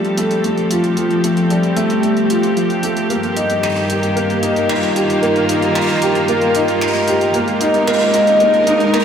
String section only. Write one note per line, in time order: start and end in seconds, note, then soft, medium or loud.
0.00 3.10 F3 medium
0.00 4.80 C4 medium
0.00 0.55 D4 medium
0.00 9.02 G4 medium
0.00 3.86 A4 medium
3.10 7.35 G2 medium
3.57 7.35 D#3 medium
3.98 8.69 A#3 medium
4.70 8.80 F4 medium
7.33 9.05 G#3 medium
7.66 9.05 A#4 medium
7.95 9.05 D#4 medium